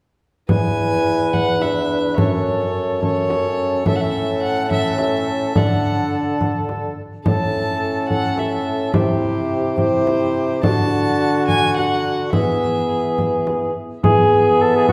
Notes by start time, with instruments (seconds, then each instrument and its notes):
0.49 bassoon E2, trombone E4, cor anglais B4, violin G#5, frame drum
1.33 violin F#5, frame drum
1.61 trombone D4, violin E5, frame drum
2.18 bassoon F#2, trombone C#4, cor anglais A4, violin C#5, frame drum
3.02 trombone C#4, cor anglais A4, violin C#5, frame drum
3.30 frame drum
3.86 bassoon A2, trombone C#4, cor anglais A4, violin E5, frame drum
3.96 violin F#5
4.00 violin E5
4.43 violin F#5
4.71 trombone C#4, cor anglais A4, violin E5, frame drum
4.98 violin E5, frame drum
5.55 bassoon D3, trombone D4, cor anglais A4, violin F#5, frame drum
6.41 frame drum
6.69 frame drum
7.25 bassoon A2, trombone C#4, cor anglais A4, violin A5, frame drum
8.09 bassoon A2, violin F#5, frame drum
8.38 violin E5, frame drum
8.94 bassoon C3, trombone E4, cor anglais G4, violin C5, frame drum
9.78 trombone E4, cor anglais G4, violin C5, frame drum
10.07 frame drum
10.63 bassoon D3, trombone D4, cor anglais F#4, violin A5, frame drum
11.48 violin G#5, frame drum
11.77 violin F#5, frame drum
12.33 bassoon E3, trombone B3, cor anglais G#4, violin E5, frame drum
13.18 frame drum
13.47 frame drum
14.03 bassoon E3, trombone B3, cor anglais G#4, violin E5, frame drum
14.61 cor anglais A4
14.76 cor anglais G#4
14.89 cor anglais F#4, frame drum